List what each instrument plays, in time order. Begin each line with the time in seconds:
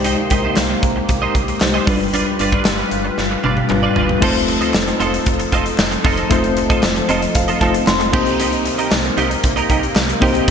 Already playing: fm bass C2, analog synth pad C3 A#3 G4, tine electric piano G#3 D#4 G4 C5
0.04 clean electric guitar D#4 G4 C5 D#5, closed hi-hat
0.18 muted clean electric guitar stroke
0.30 fm bass C2, clean electric guitar D#4 G4 C5 D#5, kick, closed hi-hat
0.44 clean electric guitar D#4 G4 C5 D#5
0.56 fm bass C2, muted clean electric guitar stroke, snare, clap, closed hi-hat
0.70 muted clean electric guitar stroke
0.83 fm bass C2, kick, closed hi-hat
0.96 muted clean electric guitar stroke
1.09 fm bass C2, muted clean electric guitar stroke, kick, closed hi-hat
1.22 clean electric guitar D#4 G4 C5 D#5
1.35 fm bass C2, muted clean electric guitar stroke, kick, closed hi-hat
1.48 muted clean electric guitar stroke, closed hi-hat
1.61 fm bass C2, tine electric piano G#3 D#4 G4 C5, muted clean electric guitar stroke, snare, clap, closed hi-hat
1.74 clean electric guitar D#4 G4 C5 D#5
1.86 fm bass G1, tine electric piano G3 D4 F4 B4, clean electric guitar D4 F4 B4 D5, analog synth pad F4 B4, kick, open hi-hat
2.01 muted clean electric guitar stroke
2.14 clean electric guitar D4 F4 B4 D5, closed hi-hat
2.26 muted clean electric guitar stroke
2.39 fm bass G1, clean electric guitar D4 F4 B4 D5, closed hi-hat
2.52 clean electric guitar D4 F4 B4 D5, kick
2.65 fm bass G1, muted clean electric guitar stroke, snare, clap, closed hi-hat
2.79 muted clean electric guitar stroke
2.91 fm bass G1, closed hi-hat
3.05 muted clean electric guitar stroke
3.18 fm bass G1, muted clean electric guitar stroke, snare
3.31 muted clean electric guitar stroke
3.44 fm bass G1, clean electric guitar D4 F4 B4 D5, high tom
3.57 muted clean electric guitar stroke, high tom
3.69 fm bass G1, tine electric piano G3 D4 F4 B4, muted clean electric guitar stroke, clap, mid tom
3.83 clean electric guitar D4 F4 B4 D5
3.96 fm bass G1, clean electric guitar D4 F4 B4 D5, floor tom
4.09 muted clean electric guitar stroke, floor tom
4.21 fm bass F1, analog synth pad F3 D#4 A4, tine electric piano A3 C4 D#4 F4 C5, clean electric guitar C4 F4 A4 D#5, kick, crash
4.35 muted clean electric guitar stroke, closed hi-hat
4.48 muted clean electric guitar stroke, closed hi-hat
4.61 clean electric guitar C4 F4 A4 D#5, closed hi-hat
4.74 fm bass F1, muted clean electric guitar stroke, snare, clap, tambourine
4.87 muted clean electric guitar stroke, closed hi-hat
5.00 fm bass F1, clean electric guitar C4 F4 A4 D#5, closed hi-hat
5.13 muted clean electric guitar stroke, closed hi-hat
5.26 fm bass F1, muted clean electric guitar stroke, kick, closed hi-hat
5.39 muted clean electric guitar stroke, closed hi-hat
5.52 fm bass F1, clean electric guitar C4 F4 A4 D#5, kick, closed hi-hat
5.66 muted clean electric guitar stroke, closed hi-hat
5.78 fm bass F1, muted clean electric guitar stroke, snare, clap, tambourine
5.91 muted clean electric guitar stroke, closed hi-hat
6.04 fm bass F1, clean electric guitar C4 F4 A4 D#5, kick, open hi-hat
6.17 clean electric guitar C4 F4 A4 D#5, closed hi-hat
6.30 fm bass F1, tine electric piano A3 C4 D#4 F4 C5, clean electric guitar C4 F4 A4 D#5, kick, closed hi-hat
6.44 muted clean electric guitar stroke, closed hi-hat
6.57 muted clean electric guitar stroke, closed hi-hat
6.70 clean electric guitar C4 F4 A4 D#5, kick, closed hi-hat
6.82 fm bass F1, muted clean electric guitar stroke, snare, clap, tambourine
6.95 muted clean electric guitar stroke, closed hi-hat
7.09 fm bass F1, clean electric guitar C4 F4 A4 D#5, tine electric piano D#5, closed hi-hat
7.22 muted clean electric guitar stroke, closed hi-hat
7.35 fm bass F1, tine electric piano F5, muted clean electric guitar stroke, kick, closed hi-hat
7.48 clean electric guitar C4 F4 A4 D#5, closed hi-hat
7.61 fm bass F1, tine electric piano A3 C4 D#4 F4 C5 A5, clean electric guitar C4 F4 A4 D#5, kick, closed hi-hat
7.74 muted clean electric guitar stroke, closed hi-hat
7.87 fm bass F1, tine electric piano C6, muted clean electric guitar stroke, snare, clap, tambourine
8.00 muted clean electric guitar stroke, closed hi-hat
8.12 fm bass C2, analog synth pad C3 A#3 D#4, tine electric piano A#3 C4 D#4 G4 C5, clean electric guitar D#4 G4 A#4 D#5, kick, crash
8.26 clean electric guitar D#4 G4 A#4 D#5, closed hi-hat
8.39 clean electric guitar D#4 G4 A#4 D#5, closed hi-hat
8.52 muted clean electric guitar stroke, closed hi-hat
8.65 muted clean electric guitar stroke, closed hi-hat
8.78 clean electric guitar D#4 G4 A#4 D#5, closed hi-hat
8.91 fm bass C2, muted clean electric guitar stroke, snare, clap, tambourine
9.04 muted clean electric guitar stroke, closed hi-hat
9.17 fm bass C2, clean electric guitar D#4 G4 A#4 D#5, closed hi-hat
9.31 muted clean electric guitar stroke, closed hi-hat
9.44 fm bass C2, muted clean electric guitar stroke, kick, closed hi-hat
9.56 clean electric guitar D#4 G4 A#4 D#5, closed hi-hat
9.70 fm bass C2, clean electric guitar D#4 G4 A#4 D#5, kick, closed hi-hat
9.83 muted clean electric guitar stroke, closed hi-hat
9.95 fm bass C2, muted clean electric guitar stroke, snare, clap, tambourine
10.09 muted clean electric guitar stroke, closed hi-hat
10.20 fm bass C2, tine electric piano A#3 C4 D#4 G4 C5, clean electric guitar D#4 G4 A#4 D#5, kick, open hi-hat
10.34 clean electric guitar D#4 G4 A#4 D#5, closed hi-hat
10.47 clean electric guitar D#4